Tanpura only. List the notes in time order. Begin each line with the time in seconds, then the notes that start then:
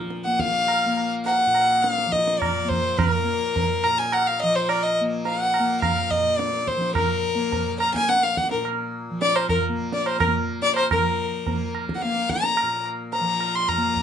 Already playing: A#2 F3 A#3
0.27 A#3
0.86 A#3
1.46 A#2
2.06 F3
2.64 A#3
3.24 A#3
3.84 A#2
4.43 F3
5.01 A#3
5.60 A#3
6.18 A#2
6.77 F3
7.35 A#3
7.95 A#3
8.54 A#2
9.10 F3
9.69 A#3
10.27 A#3
10.90 F3
11.47 A#3
12.05 A#3
12.62 A#2
13.20 F3
13.77 A#3